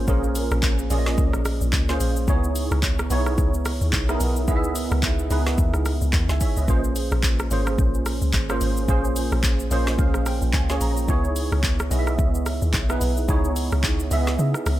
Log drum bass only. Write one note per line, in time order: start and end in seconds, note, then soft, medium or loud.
0.08 0.50 A#1 loud
0.51 0.89 A#1 loud
0.90 1.17 A#1 loud
1.18 1.33 C#2 loud
1.34 1.60 A#1 medium
1.61 1.72 A#1 loud
1.73 2.00 C#2 loud
2.00 2.27 A#1 loud
2.28 2.70 C#2 loud
2.71 3.09 C#2 loud
3.10 3.37 B1 loud
3.38 3.80 C#2 medium
3.81 3.92 D#2 medium
3.93 4.20 B1 medium
4.20 4.49 B1 medium
4.48 4.90 C#2 loud
4.92 5.29 C#2 loud
5.31 5.57 C#2 loud
5.58 5.74 D#2 medium
5.74 6.01 C#2 medium
6.02 6.13 C#2 medium
6.13 6.29 D#2 medium
6.29 6.40 C#2 loud
6.57 6.68 C#2 medium
6.68 7.10 A#1 loud
7.12 7.50 A#1 loud
7.51 7.77 G#1 loud
7.78 8.21 A#1 loud
8.22 8.33 C#2 medium
8.34 8.60 G#1 medium
8.61 8.88 G#1 medium
8.88 9.31 A#1 loud
9.32 9.70 A#1 loud
9.71 9.98 A#1 loud
9.99 10.14 C#2 loud
10.14 10.41 A#1 medium
10.42 10.53 A#1 medium
10.54 10.80 C#2 loud
10.81 11.08 A#1 medium
11.08 11.51 C#2 loud
11.52 11.90 C#2 loud
11.91 12.18 B1 loud
12.19 12.61 C#2 loud
12.62 12.73 D#2 loud
12.74 13.00 B1 medium
13.01 13.28 B1 loud
13.29 13.71 C#2 loud
13.72 14.10 C#2 loud
14.11 14.38 C#2 loud
14.39 14.54 C#3 loud
14.66 14.80 C#2 medium